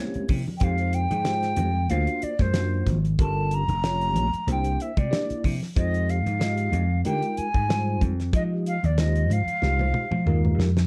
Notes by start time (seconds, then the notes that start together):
Already playing: A#3 C4 C#4 E4 G4 C#5
0.14 muted slap bass stroke, closed hi-hat, high conga
0.28 C3, kick, open hi-hat, low conga
0.48 low conga
0.57 F2 G5, kick, closed hi-hat
0.62 G#3 D#4 F4 G4 C5 F5
0.78 closed hi-hat
0.93 G5, closed hi-hat
1.11 G#2, closed hi-hat, low conga
1.25 G#3 D#4 F4 G4 C5, snare, closed hi-hat
1.43 snare, closed hi-hat
1.56 F2, closed hi-hat, high conga, low conga
1.90 D2 A#3 D4 F4 F#4 C5 F5, closed hi-hat, high conga
2.07 closed hi-hat
2.22 D5, muted slap bass stroke, closed hi-hat
2.39 F#2 C5, kick, snare, closed hi-hat, high conga
2.54 A#3 D4 F4 F#4 C5, snare, closed hi-hat
2.87 G#1, kick, snare, closed hi-hat, low conga
3.05 closed hi-hat
3.19 G1 C#4 F4 G4 A4 A#4 A5, kick, closed hi-hat
3.51 A#5, closed hi-hat
3.68 F1, closed hi-hat, low conga
3.83 A3 C#4 F4 G4 C#5, snare, closed hi-hat
4.01 closed hi-hat
4.16 A#1, closed hi-hat, high conga, low conga
4.33 muted slap bass stroke, closed hi-hat
4.47 C2 A#3 D4 E4 G4 C5, closed hi-hat, high conga
4.52 G5
4.64 closed hi-hat
4.80 E5, closed hi-hat
4.97 C3 D5, kick, closed hi-hat, high conga
5.11 A#3 D4 E4 G4 D5, snare, closed hi-hat
5.30 muted slap bass stroke, closed hi-hat
5.44 C3, kick, open hi-hat, low conga
5.63 snare
5.75 F2 G#3 D#4 F4 G4 C5 D#5, kick, closed hi-hat
5.94 closed hi-hat
6.09 F5, closed hi-hat
6.26 G#2, closed hi-hat, low conga
6.39 G#3 D#4 F4 G4 D#5, snare, closed hi-hat
6.57 closed hi-hat
6.72 F2, closed hi-hat, high conga, low conga
7.05 D3 G#3 D#4 F4 G4 A#4 G5, closed hi-hat, high conga
7.22 closed hi-hat
7.37 G#5, muted slap bass stroke, closed hi-hat
7.54 G#2, kick, closed hi-hat, high conga
7.69 G3 G#3 D#4 F4 C5, snare, closed hi-hat
8.01 F2, kick, closed hi-hat, low conga
8.20 snare, closed hi-hat
8.33 F3 G#3 D#4 F4 G4 D#5, kick, closed hi-hat
8.66 F5, closed hi-hat
8.83 D#2 D5, closed hi-hat, low conga
8.98 G#3 D#4 F4 G4 C5 D#5, snare, closed hi-hat
9.15 closed hi-hat
9.30 G#2 F5, closed hi-hat, high conga, low conga
9.46 muted slap bass stroke, closed hi-hat
9.62 C2 G#3 D#4 F4 G4 C5, snare, high conga
9.79 high tom, high conga
9.94 mid tom
10.11 F3, mid tom, high conga
10.26 D#2 G#3 D#4 F4 G4 A#4, mid tom, high conga
10.45 mid tom, high conga
10.58 F2, snare, low conga
10.77 snare, low conga